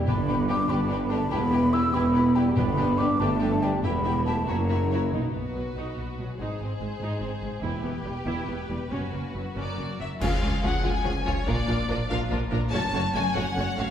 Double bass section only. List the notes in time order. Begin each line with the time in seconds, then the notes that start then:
0.07 G1
0.70 G1
1.32 E1
1.94 E1
2.56 G1
3.19 G1
3.83 E1
4.48 F#1
5.13 B1
5.34 B1
5.55 B1
5.76 B1
5.98 B1
6.19 B1
6.39 G#1
6.60 G#1
6.80 G#1
7.01 G#1
7.21 G#1
7.42 G#1
7.63 E1
7.84 E1
8.05 E1
8.27 E1
8.49 E1
8.70 E1
8.91 F#1
9.13 F#1
9.35 F#1
9.56 F#1
9.79 F#1
10.01 F#1
10.21 C#2
10.43 C#2
10.64 C#2
10.85 C#2
11.06 C#2
11.26 C#2
11.47 A#1
11.68 A#1
11.89 A#1
12.10 A#1
12.31 A#1
12.51 A#1
12.72 F#1
12.94 F#1
13.15 F#1
13.36 F#1
13.57 F#1
13.78 F#1